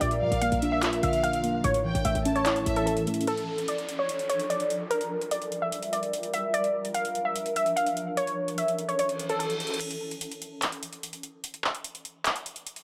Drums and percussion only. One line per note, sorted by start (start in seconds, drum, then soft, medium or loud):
0.01 closed hi-hat medium
0.11 closed hi-hat medium
0.32 closed hi-hat medium
0.42 closed hi-hat medium
0.52 closed hi-hat soft
0.62 closed hi-hat medium
0.83 clap loud
0.83 closed hi-hat medium
0.93 closed hi-hat medium
1.03 closed hi-hat medium
1.13 closed hi-hat medium
1.24 closed hi-hat medium
1.33 closed hi-hat medium
1.44 closed hi-hat medium
1.64 closed hi-hat medium
1.74 closed hi-hat medium
1.95 closed hi-hat medium
2.05 closed hi-hat medium
2.15 closed hi-hat soft
2.25 closed hi-hat medium
2.25 open hi-hat medium
2.36 closed hi-hat soft
2.46 clap loud
2.46 closed hi-hat medium
2.56 closed hi-hat medium
2.66 closed hi-hat medium
2.76 closed hi-hat medium
2.87 closed hi-hat medium
2.97 closed hi-hat medium
3.07 closed hi-hat medium
3.14 closed hi-hat medium
3.21 closed hi-hat medium
3.27 closed hi-hat medium
3.37 closed hi-hat medium
3.58 closed hi-hat medium
3.68 closed hi-hat medium
3.78 closed hi-hat soft
3.89 closed hi-hat medium
4.09 closed hi-hat medium
4.19 closed hi-hat medium
4.30 closed hi-hat medium
4.39 closed hi-hat medium
4.50 closed hi-hat medium
4.60 closed hi-hat medium
4.70 closed hi-hat medium
4.91 closed hi-hat medium
5.01 closed hi-hat medium
5.21 closed hi-hat medium
5.31 closed hi-hat medium
5.42 closed hi-hat soft
5.52 closed hi-hat medium
5.72 closed hi-hat medium
5.83 closed hi-hat medium
5.93 closed hi-hat medium
6.03 closed hi-hat medium
6.13 closed hi-hat medium
6.23 closed hi-hat medium
6.34 closed hi-hat medium
6.54 closed hi-hat medium
6.64 closed hi-hat medium
6.85 closed hi-hat medium
6.94 closed hi-hat medium
7.05 closed hi-hat soft
7.15 closed hi-hat medium
7.36 closed hi-hat medium
7.46 closed hi-hat medium
7.56 closed hi-hat medium
7.66 closed hi-hat medium
7.77 closed hi-hat medium
7.86 closed hi-hat medium
7.97 closed hi-hat medium
8.17 closed hi-hat medium
8.27 closed hi-hat medium
8.48 closed hi-hat medium
8.58 closed hi-hat medium
8.68 closed hi-hat soft
8.79 closed hi-hat medium
8.89 closed hi-hat soft
8.99 closed hi-hat medium
9.09 closed hi-hat medium
9.19 closed hi-hat medium
9.29 closed hi-hat medium
9.40 closed hi-hat medium
9.50 closed hi-hat medium
9.60 closed hi-hat medium
9.67 closed hi-hat medium
9.74 closed hi-hat medium
9.80 closed hi-hat medium
9.80 crash loud
9.91 closed hi-hat medium
10.11 closed hi-hat medium
10.21 closed hi-hat medium
10.31 closed hi-hat soft
10.42 closed hi-hat medium
10.62 clap loud
10.62 closed hi-hat medium
10.72 closed hi-hat medium
10.83 closed hi-hat medium
10.93 closed hi-hat medium
11.03 closed hi-hat medium
11.13 closed hi-hat medium
11.23 closed hi-hat medium
11.44 closed hi-hat medium
11.54 closed hi-hat medium
11.64 clap medium
11.75 closed hi-hat medium
11.84 closed hi-hat medium
11.95 closed hi-hat soft
12.05 closed hi-hat medium
12.25 clap loud
12.25 closed hi-hat medium
12.36 closed hi-hat medium
12.46 closed hi-hat medium
12.56 closed hi-hat medium
12.67 closed hi-hat medium
12.76 closed hi-hat medium